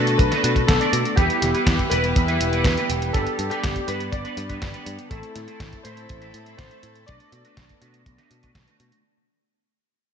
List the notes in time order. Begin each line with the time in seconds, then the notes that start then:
Already playing: B2 A3 B3 D4 F#4 A4 B4
0.07 closed hi-hat
0.18 B1 B4, kick, closed hi-hat
0.31 A3 D4 F#4 B4, snare, closed hi-hat
0.43 B2 A3 D4 F#4 B4, closed hi-hat
0.56 kick, closed hi-hat
0.67 B1 A4, kick, snare, closed hi-hat
0.80 A3 D4 F#4 D5, closed hi-hat
0.93 B2, closed hi-hat
1.05 closed hi-hat
1.16 E2 E3 G3 B3 E4 G4 B4, kick, closed hi-hat
1.30 closed hi-hat
1.42 E1, snare, closed hi-hat
1.54 G3 B3 E4 B4, closed hi-hat
1.67 E2, kick, snare, closed hi-hat
1.79 kick, closed hi-hat
1.90 E1 G3 B3 E4 B4, closed hi-hat
2.04 closed hi-hat
2.16 E2, kick, closed hi-hat
2.28 G3 B3 E4 B4, closed hi-hat
2.40 E1, closed hi-hat
2.52 G3 B3 E4 B4, closed hi-hat
2.64 E2 B4, kick, snare, closed hi-hat
2.77 G3 B3 E4 B4, closed hi-hat
2.90 E1, closed hi-hat
3.02 closed hi-hat
3.13 G1 G3 B3 D4 A4 B4, kick, closed hi-hat
3.27 closed hi-hat
3.39 G2, closed hi-hat
3.50 G3 B3 D4 G4 B4, closed hi-hat
3.64 G1, kick, snare, closed hi-hat
3.76 kick, closed hi-hat
3.87 G2 G3 B3 D4 B4, closed hi-hat
4.00 closed hi-hat
4.12 G1 D5, kick, closed hi-hat
4.25 G3 B3 D4 B4, closed hi-hat
4.37 G2, closed hi-hat
4.49 G3 B3 D4 B4, kick, closed hi-hat
4.62 G1, kick, snare, closed hi-hat
4.74 G3 B3 D4 B4, closed hi-hat
4.86 G2, closed hi-hat
4.99 closed hi-hat
5.10 A1 A3 C4 E4 A4 C5, kick, closed hi-hat
5.23 closed hi-hat
5.36 A2, snare, closed hi-hat
5.48 A3 C4 E4 C5, closed hi-hat
5.60 A1, kick, snare, closed hi-hat
5.73 kick, closed hi-hat
5.83 A2 A3 C4 E4 C5, closed hi-hat
5.97 closed hi-hat
6.09 A1, kick, closed hi-hat
6.21 A3 C4 E4 C5, closed hi-hat
6.34 A2, closed hi-hat
6.46 A3 C4 E4 C5, closed hi-hat
6.57 A1 C5, kick, snare, closed hi-hat
6.70 A3 C4 E4 C5, closed hi-hat
6.83 A2, closed hi-hat
6.95 closed hi-hat
7.06 B1 A3 B3 D4 F#4 B4 D5, kick, closed hi-hat
7.20 closed hi-hat
7.32 B2, closed hi-hat
7.44 A3 D4 F#4 B4, closed hi-hat
7.57 B1, kick, snare, closed hi-hat
7.69 kick, closed hi-hat
7.81 B2 A3 D4 F#4 B4, closed hi-hat
7.94 closed hi-hat
8.06 B1, kick, closed hi-hat
8.18 A3 D4 F#4 B4, snare, closed hi-hat
8.31 B2, closed hi-hat
8.43 A3 D4 F#4 B4, kick, closed hi-hat
8.55 B1, kick, snare, closed hi-hat
8.67 A3 D4 F#4 B4, closed hi-hat
8.80 B2, closed hi-hat
8.92 closed hi-hat